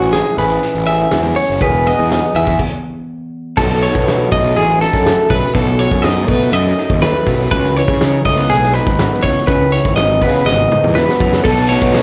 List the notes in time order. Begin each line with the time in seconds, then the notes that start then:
Already playing: A2 E3 C#4 E4 F#4 G#4
0.01 A1, closed hi-hat
0.13 E4 G#4, snare, closed hi-hat
0.26 closed hi-hat
0.38 A1 G#4 B4, closed hi-hat
0.50 closed hi-hat
0.63 E3, closed hi-hat
0.75 A1, closed hi-hat
0.86 G#4 E5, closed hi-hat
0.99 closed hi-hat
1.11 E2 G#2, snare, closed hi-hat
1.24 closed hi-hat
1.36 F#2 C#5, open hi-hat
1.50 F#1
1.61 E1 E2 G#4 B4, kick, closed hi-hat
1.73 closed hi-hat
1.86 B3 D#5, closed hi-hat
1.99 E2, closed hi-hat
2.11 D#4, snare, closed hi-hat
2.23 closed hi-hat
2.35 E2 G#4 E5, closed hi-hat
2.47 kick, snare, closed hi-hat
2.59 kick, crash
3.57 B1 B2 F#3 A3 A4, kick, crash
3.62 D#4 A4
3.83 F#3 C#5, closed hi-hat
3.95 B2, kick
4.08 D#4, snare, closed hi-hat
4.32 B1 A3 D#5, kick, open hi-hat
4.56 A1 F#2 G#4, closed hi-hat
4.81 D#4 A4, closed hi-hat
4.93 F#2, kick, snare
5.06 A3, snare, closed hi-hat
5.19 snare
5.30 B1 F#3 B4, kick, snare, open hi-hat
5.54 B1 B2 A4, kick, closed hi-hat
5.79 F#3 C#5, closed hi-hat
5.91 F#2, kick
6.02 D#4 D#5, snare, closed hi-hat
6.28 B2 A3 B4, kick, open hi-hat
6.52 F#2 D#5, closed hi-hat
6.66 snare
6.78 D#4, closed hi-hat
6.90 D#2, kick
7.02 A3 B4, snare, closed hi-hat
7.15 snare
7.27 B1 F#3, kick, snare, open hi-hat
7.51 C#2 C#3 B4, kick, closed hi-hat
7.64 snare
7.77 E3 C#5, closed hi-hat
7.88 C#3, kick
8.01 D#4, snare, closed hi-hat
8.25 C#2 A3 D#5, kick, open hi-hat
8.37 B3, snare
8.49 B1 G#2 G#4, closed hi-hat
8.63 snare
8.74 D#4 B4, closed hi-hat
8.87 G#1, kick
8.99 B3, snare, closed hi-hat
9.13 snare
9.23 C#2 E3 C#5, kick, open hi-hat
9.47 C#2 C#3 B4, kick, closed hi-hat
9.72 E3 C#5, closed hi-hat
9.85 G#1, kick
9.96 D#4 D#5, snare, closed hi-hat
10.22 C#3 B3 B4, kick, open hi-hat
10.46 G#1 G#2 D#5, snare
10.59 high tom
10.72 D#4, mid tom
10.84 E2, mid tom
10.95 B3 B4, snare
11.09 snare
11.20 F#2 E3, kick
11.33 snare
11.44 B1 B2 A4, kick, crash
11.68 F#3 A3 D#4 F#4 C#5, closed hi-hat
11.82 B2, kick
11.92 F#3 A3 D#4 F#4, snare, closed hi-hat